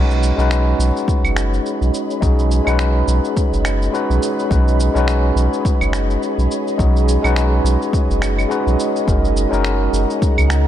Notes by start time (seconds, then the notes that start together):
Already playing: B1 G#3 C#4 D#4 F#4 G#4 B4 C#5 D#5 B5
0.11 shaker
0.23 shaker
0.36 B1 G#3 C#4 D#4 F#4, shaker
0.41 B4
0.51 finger snap, shaker
0.79 B1, shaker
0.97 shaker
1.08 kick, shaker
1.23 F#1, claves, shaker
1.36 finger snap, shaker
1.54 shaker
1.66 shaker
1.81 B1, shaker
1.94 shaker
2.10 shaker
2.20 B1 G#3 C#4 D#4 F#4 G#4, kick, shaker
2.39 shaker
2.51 shaker
2.64 B1 G#3 C#4 D#4 F#4, claves, shaker
2.69 B4
2.79 finger snap, shaker
3.08 B1, shaker
3.25 shaker
3.37 kick, shaker
3.53 F#1, shaker
3.65 finger snap, claves, shaker
3.82 shaker
3.92 G#3 C#4 D#4 F#4 B4, shaker
4.10 B1, shaker
4.23 shaker
4.39 shaker
4.49 B1 G#3 C#4 D#4 F#4 B4, kick, shaker
4.68 shaker
4.80 shaker
4.93 B1 G#3 C#4 D#4 F#4, shaker
4.98 B4
5.08 finger snap, shaker
5.36 B1, shaker
5.53 shaker
5.65 kick, shaker
5.81 F#1, claves, shaker
5.93 finger snap, shaker
6.10 shaker
6.23 shaker
6.38 B1, shaker
6.51 shaker
6.67 shaker
6.78 B1 G#3 C#4 D#4 F#4 G#4, kick, shaker
6.96 shaker
7.08 shaker
7.22 B1 G#3 C#4 D#4 F#4, claves, shaker
7.27 B4
7.36 finger snap, shaker
7.64 B1, shaker
7.82 shaker
7.93 kick, shaker
8.09 F#1, shaker
8.22 finger snap, claves, shaker
8.38 claves, shaker
8.49 G#3 C#4 D#4 F#4 B4, shaker
8.67 B1, shaker
8.79 shaker
8.96 shaker
9.06 F#1 G#3 C#4 D#4 F#4 A#4 F#5 A#5, kick, shaker
9.25 shaker
9.37 shaker
9.49 F#1 G#3 C#4 D#4 F#4
9.53 A#4, shaker
9.65 finger snap, shaker
9.93 F#1, shaker
10.10 shaker
10.22 kick, shaker
10.38 C#2, claves, shaker
10.50 finger snap, shaker